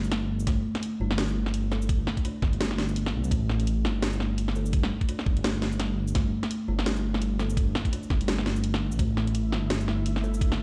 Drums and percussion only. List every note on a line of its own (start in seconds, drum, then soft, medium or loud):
0.04 shaker soft
0.12 snare medium
0.12 closed hi-hat medium
0.40 shaker medium
0.47 kick loud
0.47 snare soft
0.47 closed hi-hat medium
0.75 snare medium
0.75 closed hi-hat soft
0.83 closed hi-hat medium
1.11 snare medium
1.18 snare loud
1.18 closed hi-hat medium
1.29 shaker soft
1.46 snare soft
1.54 closed hi-hat medium
1.72 snare soft
1.72 shaker soft
1.82 shaker medium
1.89 kick loud
1.89 closed hi-hat medium
2.07 snare medium
2.17 kick medium
2.17 closed hi-hat soft
2.25 closed hi-hat medium
2.42 kick loud
2.42 snare soft
2.53 closed hi-hat soft
2.61 snare loud
2.61 closed hi-hat medium
2.71 snare soft
2.78 snare medium
2.78 closed hi-hat soft
2.89 shaker soft
2.96 closed hi-hat medium
3.06 snare medium
3.24 shaker medium
3.31 kick loud
3.31 closed hi-hat medium
3.49 snare soft
3.60 closed hi-hat soft
3.67 closed hi-hat medium
3.85 snare medium
4.02 snare loud
4.02 closed hi-hat medium
4.13 shaker soft
4.20 snare soft
4.38 closed hi-hat medium
4.48 snare soft
4.55 shaker soft
4.66 shaker medium
4.73 kick loud
4.73 closed hi-hat medium
4.83 snare medium
5.01 kick medium
5.01 closed hi-hat soft
5.09 closed hi-hat medium
5.19 snare soft
5.26 kick loud
5.37 closed hi-hat soft
5.44 snare loud
5.44 snare medium
5.44 closed hi-hat medium
5.62 snare medium
5.62 closed hi-hat soft
5.72 shaker soft
5.80 snare medium
5.80 closed hi-hat medium
6.08 shaker medium
6.15 kick loud
6.15 snare medium
6.15 closed hi-hat medium
6.43 snare medium
6.43 closed hi-hat soft
6.51 closed hi-hat medium
6.79 snare medium
6.86 snare loud
6.86 closed hi-hat medium
6.96 shaker soft
7.14 snare medium
7.22 closed hi-hat medium
7.39 snare medium
7.39 shaker soft
7.50 shaker medium
7.57 kick loud
7.57 closed hi-hat medium
7.75 snare medium
7.85 kick medium
7.85 closed hi-hat soft
7.93 closed hi-hat medium
8.03 shaker soft
8.10 kick medium
8.10 snare soft
8.21 closed hi-hat soft
8.28 snare loud
8.28 closed hi-hat medium
8.38 snare medium
8.46 snare medium
8.46 closed hi-hat soft
8.56 shaker soft
8.64 closed hi-hat medium
8.74 snare medium
8.92 shaker medium
8.99 kick loud
8.99 closed hi-hat medium
9.17 snare medium
9.27 closed hi-hat soft
9.35 closed hi-hat medium
9.52 snare medium
9.70 snare loud
9.70 closed hi-hat medium
9.81 shaker soft
9.88 snare medium
10.06 closed hi-hat medium
10.16 snare medium
10.24 shaker soft
10.34 shaker medium
10.41 kick loud
10.41 closed hi-hat medium
10.52 snare medium